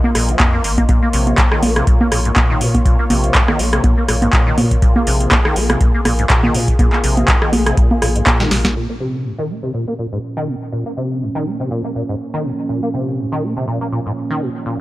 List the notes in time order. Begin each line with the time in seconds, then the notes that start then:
Already playing: A#3 F4 D#5
0.04 A#3, high conga
0.15 A#1 A#2, cross-stick, open hi-hat
0.29 F3, closed hi-hat
0.40 F2, kick, clap, closed hi-hat, high conga
0.53 A#3
0.64 G#1 A#3, open hi-hat
0.78 A#3, kick, closed hi-hat, high conga
0.89 A#2 C#5, kick, closed hi-hat, high conga
1.03 A#3
1.13 A#1 C3, open hi-hat
1.27 closed hi-hat, high conga
1.38 G#2, kick, clap, closed hi-hat
1.52 D#3, cross-stick
1.63 A#1 A#3, open hi-hat, high conga
1.76 C3, cross-stick, closed hi-hat
1.87 A#2, kick, closed hi-hat
2.01 A#3, high conga
2.12 A#1 A#2, cross-stick, open hi-hat
2.25 G#2, closed hi-hat
2.36 A#2, kick, clap, closed hi-hat, high conga
2.50 D#3
2.61 A#2, open hi-hat
2.75 kick, closed hi-hat, high conga
2.86 A#2, kick, closed hi-hat
2.99 A#3
3.10 A#1 C3, open hi-hat, high conga
3.24 closed hi-hat
3.35 G#2, kick, clap, closed hi-hat
3.48 D#3, cross-stick, high conga
3.59 A#1 A#3, open hi-hat
3.73 C3, cross-stick, closed hi-hat
3.84 A#2, kick, closed hi-hat, high conga
3.97 A#3
4.08 A#1 A#2, cross-stick, open hi-hat
4.22 G#2, closed hi-hat, high conga
4.33 A#2, kick, clap, closed hi-hat
4.47 D#3
4.58 A#2, open hi-hat, high conga
4.71 kick, closed hi-hat
4.82 A#2 G#4, kick, closed hi-hat
4.96 A#3, high conga
5.07 A#1 C3, open hi-hat
5.21 closed hi-hat
5.31 G#2, kick, clap, closed hi-hat, high conga
5.45 D#3, cross-stick
5.56 A#1 A#3, open hi-hat
5.70 C3, cross-stick, closed hi-hat, high conga
5.81 A#2, kick, closed hi-hat
5.94 A#3
6.05 A#1 A#2, cross-stick, open hi-hat, high conga
6.19 G#2, closed hi-hat
6.30 A#2, kick, clap, closed hi-hat
6.43 D#3, high conga
6.54 A#2, open hi-hat
6.68 kick, closed hi-hat
6.79 A#2, kick, closed hi-hat, high conga
6.93 A#3, clap
7.04 A#1 C3, open hi-hat
7.17 closed hi-hat, high conga
7.28 G#2, kick, clap, closed hi-hat
7.42 D#3, cross-stick
7.53 A#1 A#3, open hi-hat, high conga
7.66 C3, cross-stick, closed hi-hat
7.77 A#2, kick, closed hi-hat
7.91 A#3, high conga
8.02 A#1 A#2, cross-stick, open hi-hat
8.16 G#2, closed hi-hat
8.27 A#2, kick, clap, closed hi-hat, high conga
8.40 D#3, snare
8.51 A#1 A#2, snare, open hi-hat
8.65 kick, snare, closed hi-hat, high conga
8.76 A#2 F3 C#4
8.89 A#3
9.00 C3
9.25 G#2
9.39 D#3
9.49 A#3
9.63 C3
9.74 A#2
9.88 A#3
9.99 A#2
10.12 G#2
10.37 D#3
10.48 A#2
10.72 A#2
10.86 A#3
10.97 C3
11.22 G#2
11.35 D#3
11.46 A#3
11.60 C3
11.71 A#2
11.84 A#3
11.95 A#2
12.09 G#2
12.34 D#3
12.45 A#2
12.69 A#2
12.83 A#3
12.94 C3
13.18 G#2
13.32 D#3
13.43 A#3
13.57 C3
13.68 A#2
13.81 A#3
13.92 A#2
14.06 G#2
14.30 D#3
14.41 A#2
14.66 A#2